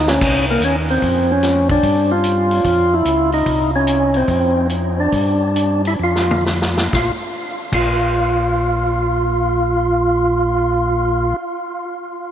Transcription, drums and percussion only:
0.08 snare medium
0.21 kick medium
0.21 crash medium
0.62 closed hi-hat medium
0.89 open hi-hat soft
1.02 kick soft
1.02 open hi-hat soft
1.43 snare soft
1.43 closed hi-hat soft
1.69 kick medium
1.69 open hi-hat soft
1.83 kick soft
1.83 open hi-hat soft
2.24 closed hi-hat medium
2.51 open hi-hat soft
2.65 kick soft
2.65 open hi-hat soft
3.05 closed hi-hat soft
3.32 open hi-hat soft
3.46 kick soft
3.46 open hi-hat soft
3.87 closed hi-hat medium
4.14 open hi-hat soft
4.28 kick soft
4.28 open hi-hat soft
4.70 closed hi-hat soft
5.12 kick soft
5.12 open hi-hat soft
5.56 closed hi-hat soft
5.85 open hi-hat soft
6.16 snare soft
6.31 high tom medium
6.46 snare medium
6.62 snare medium
6.77 snare medium
6.93 kick medium
6.93 snare medium
7.73 kick soft
7.73 crash medium

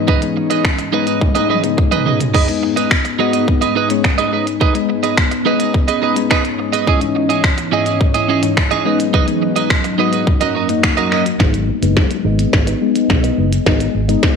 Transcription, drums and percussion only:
0.08 kick loud
0.22 closed hi-hat medium
0.51 closed hi-hat medium
0.65 finger snap loud
0.65 kick loud
0.79 closed hi-hat medium
1.07 closed hi-hat medium
1.21 kick loud
1.21 high tom medium
1.35 closed hi-hat medium
1.35 high tom medium
1.50 mid tom medium
1.64 closed hi-hat medium
1.78 kick loud
1.92 closed hi-hat soft
1.92 mid tom medium
2.06 floor tom medium
2.20 closed hi-hat medium
2.20 floor tom medium
2.34 kick loud
2.34 crash medium
2.48 closed hi-hat medium
2.77 closed hi-hat medium
2.91 finger snap loud
2.91 kick loud
3.05 closed hi-hat medium
3.33 closed hi-hat medium
3.48 kick loud
3.62 closed hi-hat medium
3.90 closed hi-hat medium
4.04 finger snap loud
4.04 kick loud
4.18 closed hi-hat soft
4.47 closed hi-hat medium
4.61 kick loud
4.75 closed hi-hat medium
5.04 closed hi-hat medium
5.17 finger snap loud
5.17 kick loud
5.32 closed hi-hat medium
5.60 closed hi-hat medium
5.74 kick loud
5.88 closed hi-hat medium
6.16 closed hi-hat medium
6.31 finger snap loud
6.31 kick loud
6.45 closed hi-hat soft
6.73 closed hi-hat medium
6.87 kick loud
7.01 closed hi-hat medium
7.30 closed hi-hat medium
7.44 finger snap loud
7.44 kick loud
7.58 closed hi-hat medium
7.86 closed hi-hat medium
8.01 kick loud
8.14 closed hi-hat medium
8.43 closed hi-hat medium
8.57 finger snap loud
8.57 kick loud
8.71 closed hi-hat soft
9.00 closed hi-hat medium
9.14 kick loud
9.28 closed hi-hat medium
9.56 closed hi-hat medium
9.70 finger snap loud
9.70 kick loud
9.84 closed hi-hat medium
10.13 closed hi-hat medium
10.27 kick loud
10.41 closed hi-hat medium
10.69 closed hi-hat medium
10.83 finger snap loud
10.83 kick loud
10.97 closed hi-hat soft
11.12 finger snap medium
11.26 closed hi-hat medium
11.40 kick loud
11.40 snare medium
11.54 closed hi-hat medium
11.83 closed hi-hat medium
11.97 kick loud
11.97 snare medium
12.11 closed hi-hat medium
12.39 closed hi-hat medium
12.53 kick loud
12.53 snare medium
12.67 closed hi-hat medium
12.96 closed hi-hat medium
13.10 kick loud
13.10 snare medium
13.24 closed hi-hat soft
13.53 closed hi-hat medium
13.66 kick loud
13.66 snare medium
13.80 closed hi-hat medium
14.09 closed hi-hat medium
14.23 kick loud
14.23 snare medium

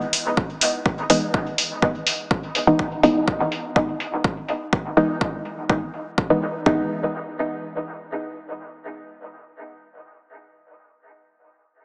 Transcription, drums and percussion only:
0.13 open hi-hat medium
0.37 kick loud
0.61 open hi-hat medium
0.86 kick loud
1.10 open hi-hat medium
1.34 kick loud
1.58 open hi-hat medium
1.82 kick loud
2.07 open hi-hat medium
2.31 kick loud
2.55 open hi-hat medium
2.79 kick loud
3.03 open hi-hat medium
3.28 kick loud
3.52 open hi-hat medium
3.76 kick loud
4.00 open hi-hat medium
4.24 kick loud
4.48 open hi-hat medium
4.73 kick loud
4.97 open hi-hat medium
5.21 kick loud
5.45 open hi-hat medium
5.70 kick loud
5.94 open hi-hat medium
6.18 kick loud
6.42 open hi-hat medium
6.66 kick loud

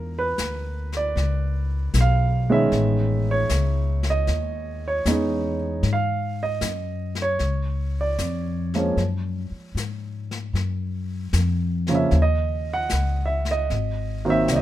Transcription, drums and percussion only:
0.38 snare soft
0.38 hi-hat pedal soft
0.92 snare soft
1.17 brush sweep soft
1.17 snare soft
1.94 snare soft
1.94 hi-hat pedal medium
2.72 brush sweep soft
2.72 snare soft
3.49 snare soft
3.49 hi-hat pedal soft
4.03 snare soft
4.27 brush sweep soft
4.27 snare soft
5.06 snare soft
5.06 hi-hat pedal soft
5.83 brush sweep soft
5.83 snare soft
6.61 snare soft
6.61 hi-hat pedal soft
7.15 snare soft
7.39 brush sweep soft
7.39 snare soft
8.18 snare soft
8.18 hi-hat pedal soft
8.74 snare soft
8.97 brush sweep soft
8.97 snare soft
9.77 snare soft
9.77 hi-hat pedal soft
10.31 snare soft
10.55 brush sweep soft
10.55 snare soft
11.33 snare medium
11.33 hi-hat pedal soft
11.87 snare soft
12.11 brush sweep soft
12.11 snare soft
12.90 snare soft
12.90 hi-hat pedal soft
13.45 snare soft
13.70 brush sweep soft
13.70 snare soft
14.48 snare medium
14.48 hi-hat pedal soft

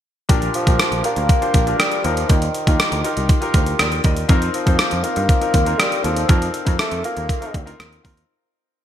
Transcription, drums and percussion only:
0.29 kick loud
0.29 closed hi-hat medium
0.42 closed hi-hat soft
0.54 closed hi-hat medium
0.67 kick medium
0.67 closed hi-hat soft
0.79 cross-stick loud
0.79 closed hi-hat medium
0.92 closed hi-hat soft
1.04 closed hi-hat medium
1.16 closed hi-hat soft
1.29 kick medium
1.29 closed hi-hat medium
1.42 closed hi-hat soft
1.54 kick medium
1.54 closed hi-hat medium
1.67 closed hi-hat soft
1.80 cross-stick loud
1.80 closed hi-hat medium
1.92 closed hi-hat soft
2.04 closed hi-hat medium
2.17 closed hi-hat medium
2.29 kick loud
2.29 closed hi-hat medium
2.42 closed hi-hat soft
2.55 closed hi-hat medium
2.67 kick medium
2.67 closed hi-hat soft
2.80 cross-stick loud
2.80 closed hi-hat medium
2.92 closed hi-hat soft
3.05 closed hi-hat medium
3.17 closed hi-hat medium
3.29 kick medium
3.29 closed hi-hat medium
3.42 closed hi-hat soft
3.54 kick medium
3.54 closed hi-hat medium
3.66 closed hi-hat soft
3.79 cross-stick loud
3.79 closed hi-hat medium
3.92 closed hi-hat soft
4.04 kick medium
4.04 closed hi-hat medium
4.17 closed hi-hat medium
4.29 kick loud
4.29 closed hi-hat medium
4.42 closed hi-hat medium
4.54 closed hi-hat medium
4.67 kick medium
4.67 closed hi-hat soft
4.79 cross-stick loud
4.79 closed hi-hat medium
4.91 closed hi-hat soft
5.04 closed hi-hat medium
5.16 closed hi-hat medium
5.29 kick medium
5.29 closed hi-hat medium
5.42 closed hi-hat soft
5.54 kick medium
5.54 closed hi-hat medium
5.66 closed hi-hat soft
5.80 cross-stick loud
5.80 closed hi-hat medium
5.92 closed hi-hat soft
6.04 closed hi-hat medium
6.17 closed hi-hat medium
6.29 kick loud
6.29 closed hi-hat medium
6.42 closed hi-hat soft
6.54 closed hi-hat medium
6.67 kick medium
6.67 closed hi-hat medium
6.79 cross-stick loud
6.79 closed hi-hat medium
6.91 closed hi-hat soft
7.04 closed hi-hat medium
7.17 closed hi-hat medium
7.29 kick medium
7.29 closed hi-hat medium
7.42 closed hi-hat soft
7.54 kick medium
7.54 closed hi-hat medium
7.67 closed hi-hat medium
7.80 cross-stick loud
7.80 closed hi-hat medium
7.93 closed hi-hat soft
8.05 kick medium
8.05 open hi-hat medium
8.17 closed hi-hat medium

